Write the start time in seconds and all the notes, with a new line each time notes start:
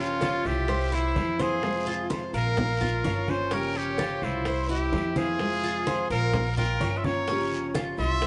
Already playing: G1 C#3 F3 A#3 C#4 F4 G4
0.00 F4 C#5
0.21 F4, high bongo, high conga, short guiro
0.45 C2 G4 E5, high bongo, high conga, short guiro
0.68 C5, muted nylon-string guitar stroke, high bongo, high conga, long guiro
0.92 E4 C5, high bongo, high conga
1.15 F2 E3 A#3 C4 E4, high bongo, low bongo, high conga, short guiro
1.38 E3 A#3 C4 E4 G#4 C5 F5, high bongo, high conga, short guiro
1.62 C3 F3 G#3 C4 F4, high bongo, high conga, long guiro
1.87 F4, high conga
2.10 C5, high bongo, high conga, short guiro
2.33 A#1 A#4 F5, high bongo, high conga, short guiro
2.57 muted nylon-string guitar stroke, high bongo, high conga, low conga, long guiro
2.81 F4, high bongo, high conga, low conga
3.04 G1 F3 A#3 C#4 F4 C#5, high bongo, low bongo, high conga, short guiro
3.28 A#3 C#4 F4 C5 G#5, high bongo, high conga, short guiro
3.51 C#3 F3 A#3 C#4 F4 G4 A#4 G5, high bongo, high conga, long guiro
3.75 G4 C#5, high conga
3.98 F4, high bongo, high conga, short guiro
4.21 C2 E4 C5, high bongo, high conga, short guiro
4.45 C5, muted nylon-string guitar stroke, high bongo, high conga, long guiro
4.69 E4 G4 E5, high bongo, high conga
4.93 F2 E3 A#3 C4 E4, high bongo, low bongo, high conga, short guiro
5.16 E3 A#3 C4 E4 G#4 C5 F5, high bongo, high conga, short guiro
5.39 C3 F3 G#3 C4 F4, high bongo, high conga, long guiro
5.64 F4, high conga
5.87 C5, high bongo, high conga, short guiro
6.10 A#1 A#4 F5, high bongo, high conga, short guiro
6.33 muted nylon-string guitar stroke, high bongo, high conga, low conga, long guiro
6.57 F4 A#4 G5, high bongo, high conga, low conga
6.80 G1 F3 A#3 C#4 F4 C#5, high bongo, low bongo, high conga, short guiro
6.97 E5 C6
7.04 A#3 C#4 F4 C#5 A#5, high bongo, high conga, short guiro
7.28 C#3 F3 A#3 C#4 F4 G4, high bongo, high conga, long guiro
7.52 high conga
7.75 F4, high bongo, high conga, short guiro
7.98 C2 E5 C6, high bongo, high conga, short guiro
8.22 C5, muted nylon-string guitar stroke, high bongo, high conga, long guiro